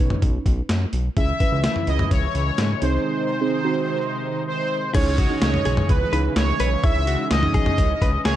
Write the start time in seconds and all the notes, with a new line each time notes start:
Already playing: C#4 D#4 B4 C#5
0.00 B1
0.10 mid tom
0.22 B1, kick, closed hi-hat
0.46 B1, kick, closed hi-hat
0.69 F#2, snare, closed hi-hat
0.93 B1, closed hi-hat
1.17 C#2 C#3 E3 G#3 C#4 E4 G#4 E5, kick, closed hi-hat
1.40 C#4 E4 B4, kick, closed hi-hat
1.52 C#2 C#4 E4 B4
1.64 snare, closed hi-hat
1.76 mid tom
1.87 C#2 D#5, closed hi-hat
1.99 mid tom
2.11 C#2 C#5, kick, closed hi-hat
2.35 C#2, closed hi-hat
2.58 G#2, snare, closed hi-hat
2.82 C2 C3 D#3 C4 D#4 G#4 C5, closed hi-hat
3.41 C4 D#4 G#4
3.65 C4 D#4 F#4
4.47 C5
4.95 C#2 C#3 E3 G#3 C#4 D#4 E4 G#4 C#5 D#5, kick, closed hi-hat, crash
5.18 F#4, kick, closed hi-hat
5.30 C#4 D#4 E4 G#4
5.42 C#2 C#5, snare, closed hi-hat
5.54 mid tom
5.65 B1 G#4, closed hi-hat
5.77 mid tom
5.89 C#2 B4, kick, closed hi-hat
6.13 C#2 C#4 D#4 E4 G#4 B4, closed hi-hat
6.36 C#2 C#5, snare, closed hi-hat
6.60 B1 B4, closed hi-hat
6.84 C#2 C#4 D#4 E4 G#4 C#5 E5, kick, closed hi-hat
7.07 F#4, closed hi-hat
7.19 C#4 D#4 E4 G#4
7.31 C#2 D#5, snare, closed hi-hat
7.43 C#4 D#4 E4 G#4, mid tom
7.54 B1 G#4, kick, closed hi-hat
7.66 mid tom
7.78 C#2, kick, closed hi-hat
8.02 C#2 B4, kick, closed hi-hat
8.25 C#2 G#4 C#5, snare, closed hi-hat